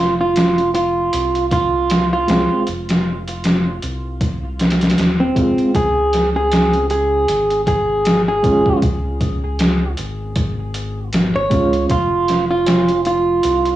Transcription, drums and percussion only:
0.36 snare, closed hi-hat
0.58 closed hi-hat
0.75 closed hi-hat
1.13 closed hi-hat
1.35 closed hi-hat
1.51 kick, closed hi-hat
1.90 snare, closed hi-hat
2.28 snare, closed hi-hat
2.67 closed hi-hat
2.89 snare, closed hi-hat
3.28 closed hi-hat
3.44 snare, closed hi-hat
3.82 closed hi-hat
4.21 kick, closed hi-hat
4.59 snare, closed hi-hat
4.70 snare, closed hi-hat
4.81 snare, closed hi-hat
4.90 snare, closed hi-hat
4.98 snare, closed hi-hat
5.36 kick, closed hi-hat
5.58 closed hi-hat
5.75 kick, closed hi-hat
6.13 snare, closed hi-hat
6.52 snare, closed hi-hat
6.73 closed hi-hat
6.90 closed hi-hat
7.28 closed hi-hat
7.50 closed hi-hat
7.67 kick, closed hi-hat
8.05 snare, closed hi-hat
8.44 kick, closed hi-hat
8.66 kick
8.82 kick, closed hi-hat
9.21 kick, closed hi-hat
9.59 snare, closed hi-hat
9.97 closed hi-hat
10.36 kick, closed hi-hat
10.74 closed hi-hat
11.13 snare, closed hi-hat
11.51 kick, closed hi-hat
11.73 closed hi-hat
11.90 kick, closed hi-hat
12.28 snare, closed hi-hat
12.66 snare, closed hi-hat, tabla na
12.88 closed hi-hat
13.05 closed hi-hat
13.43 closed hi-hat
13.65 closed hi-hat

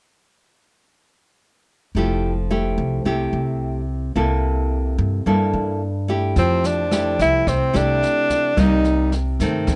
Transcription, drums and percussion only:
6.36 kick, snare
6.64 snare
6.91 cross-stick, snare
7.19 kick, snare
7.47 kick, cross-stick, snare
7.75 snare
8.03 snare
8.30 kick, snare
8.57 kick, cross-stick, snare
8.84 snare
9.12 snare
9.40 kick, snare
9.67 kick, cross-stick, snare

